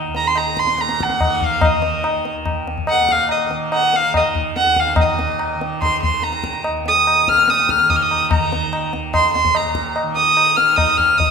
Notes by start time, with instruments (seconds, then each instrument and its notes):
Already playing: tanpura A#2 D#3
0.07 tanpura D#2
0.15 violin A#5, tabla te
0.27 violin C6
0.36 violin A#5, tabla na
0.57 violin C6, tabla ke
0.63 tanpura A#2
0.67 tabla te
0.78 violin A#5, tabla te
0.89 tabla te
1.00 violin F#5, tabla ke
1.10 tabla te
1.20 tanpura D#3, tabla na, tabla ge
1.42 violin F5, tabla ge
1.61 violin D#5, tabla na, tabla ge
1.77 tanpura D#3
1.82 tabla te
2.04 tabla na
2.25 tabla te
2.35 tanpura D#2
2.46 tabla na, tabla ge
2.67 tabla te
2.78 tabla ge
2.87 violin F#5, tabla na
2.92 tanpura A#2
3.09 violin F5, tabla ke
3.29 violin D#5, tabla na
3.48 tanpura D#3, tabla te
3.72 violin F#5, tabla na
3.93 violin F5, tabla te
4.05 tanpura D#3
4.14 violin D#5, tabla na, tabla ge
4.35 tabla ge
4.56 violin F#5, tabla te
4.62 tanpura D#2
4.66 tabla te
4.76 violin F5, tabla ke
4.87 tabla te
4.96 tanpura A#2, tabla na, tabla ge
5.01 violin D#5
5.19 tabla te
5.39 tabla na
5.54 tanpura D#3
5.61 tabla te
5.82 violin C6, tabla na, tabla ge
6.03 violin C6, tabla ge
6.11 tanpura D#3
6.22 violin A#5, tabla te
6.32 tabla te
6.44 tabla ke
6.53 tabla te
6.64 tanpura D#2, tabla na
6.86 violin D#6, tabla te
7.07 tabla na
7.22 tanpura A#2
7.28 violin F6, tabla ke
7.38 tabla te
7.48 violin D#6, tabla te
7.59 tabla te
7.69 violin F6, tabla ke
7.80 tanpura D#3, tabla te
7.90 violin D#6, tabla tin, tabla ge
7.96 violin F6
8.02 violin D#6
8.11 tabla na
8.31 tanpura D#3, violin A#5, tabla na, tabla ge
8.53 tabla te
8.73 tabla na
8.92 tanpura D#2, tabla te
9.14 violin C6, tabla na, tabla ge
9.34 violin C6, tabla te
9.45 tanpura A#2, tabla ge
9.55 violin A#5, tabla na
9.75 tabla ke
9.96 tabla na
10.02 tanpura D#3
10.16 violin D#6, tabla te
10.37 tabla na
10.57 tanpura D#3, violin F6, tabla te
10.76 violin D#6, tabla na, tabla ge
10.97 violin F6, tabla ge
11.13 tanpura D#2
11.17 violin D#6, tabla tin, tabla ge